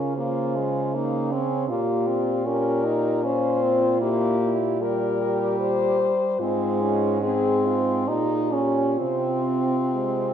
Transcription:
Already playing: C#3 C#4 F4 A#4
0.16 A#3 F4 C5
0.56 G#3
0.95 A#3 D#4
1.32 C4 C#4
1.69 A#2 A#3 F4 G4
2.07 C4
2.46 C#4 G4 A#4
2.85 D#4
3.24 C#4 F4 C5
3.62 C4
4.01 A#3 E4 G4
4.41 E4
4.81 G3 G4 A#4
5.21 G4
5.60 C5
6.40 G#2 G#3 C4 F4
6.82 C#4
7.22 C4 G#4
7.65 F4
8.07 A#2 D#4 G4
8.17 G#4
8.24 G4
8.33 G#4
8.43 G4
8.50 C#4 G#4
8.59 G4
8.98 C3 C4 F4
9.94 G#3

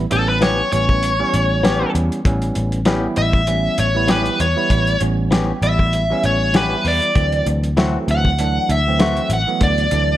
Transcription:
0.10 A1 E3 G3 B3 C#4 A4, closed hi-hat
0.29 B4
0.41 E3 B3 C#4 G4 C#5, snare, closed hi-hat
0.72 A1 E3 G3 B3 C#4 C#5, closed hi-hat
0.89 kick
1.03 closed hi-hat
1.19 E3 G3 B3 C#4
1.34 A1, closed hi-hat
1.64 E3 B3 C#4 G4, snare, closed hi-hat
1.81 E3 G3 B3 C#4
1.95 E2, closed hi-hat
2.12 closed hi-hat
2.25 A1 E3 G3 B3 C#4, kick, closed hi-hat
2.42 closed hi-hat
2.55 A1, closed hi-hat
2.72 closed hi-hat
2.85 E3 G3 B3 C#4 E4 G4, snare, closed hi-hat
3.16 A1 E5, closed hi-hat
3.33 kick
3.47 E3 G3 B3 C#4, closed hi-hat
3.78 A1 C#5, closed hi-hat
3.95 E3 G3 B3 E4
4.08 E3 B3 C#4 G4 B4, snare, closed hi-hat
4.26 closed hi-hat
4.40 E2 C#5, closed hi-hat
4.56 E3 G3 B3 E4
4.70 A1, kick, closed hi-hat
4.87 closed hi-hat
5.00 A1 E3 G3 B3 C#4, closed hi-hat
5.31 E3 B3 C#4 G4, snare, closed hi-hat
5.62 A1 E3 G3 B3 E4 E5, closed hi-hat
5.79 kick
5.93 closed hi-hat
6.10 E3 G3 B3 C#4
6.23 A1 C#5, closed hi-hat
6.54 E3 B3 C#4 G4 B4, snare, closed hi-hat
6.71 E3 G3 B3 E4
6.85 E2 D5, open hi-hat
7.02 closed hi-hat
7.14 D2 E3 F#3 A3 C4, kick, closed hi-hat
7.32 closed hi-hat
7.46 D2, closed hi-hat
7.64 closed hi-hat
7.77 E3 F#3 A3 C4 F#4, snare, closed hi-hat
8.08 D2 F#5, closed hi-hat
8.25 kick
8.39 E3 F#3 A3 D4, closed hi-hat
8.69 D2 E5, closed hi-hat
8.87 E3 F#3 A3 C4
8.99 E3 A3 C4 F#4, snare, closed hi-hat
9.17 closed hi-hat
9.30 A1 F#5, closed hi-hat
9.47 E3 F#3 A3 B3
9.61 D2 D5, kick, closed hi-hat
9.78 closed hi-hat
9.91 D2 E3 F#3 A3 D4, closed hi-hat

